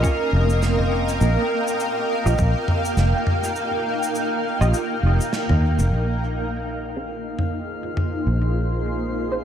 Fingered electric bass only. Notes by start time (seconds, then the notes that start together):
0.33 F1
1.21 A#1
2.26 A#1
2.39 A#1
2.97 F1
4.61 A#1
5.03 F1
5.50 D#2
5.79 F1
5.92 A#1
8.27 A#1